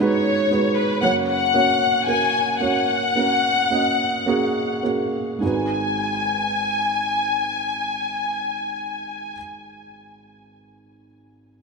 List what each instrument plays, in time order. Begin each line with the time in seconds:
Already playing: felt piano G#2 D#3 G#4
0.00 felt piano G#3 D#4 F#4 B4, violin section C#5
0.51 felt piano G#3 D#4 F#4 B4
0.76 violin section B4
1.01 felt piano F#2 C#3 A#3 C#4 F#4 C#5, violin section F#5
1.27 violin section F#5
1.54 felt piano A#3 C#4 F#4 C#5
2.07 felt piano A#3 C#4 F#4 A#4, violin section G#5
2.60 felt piano A#3 C#4 F#4 C#5, violin section F#5
3.15 felt piano A#3 C#4 F#4 A#4
3.70 felt piano A#3 C#4 F#4 D#5
4.26 felt piano A#3 C#4 F#4 G#4
4.83 felt piano A#3 C#4 F#4 G#4
5.38 felt piano G#1 G#3 D#4
5.43 felt piano F#4 B4, violin section G#5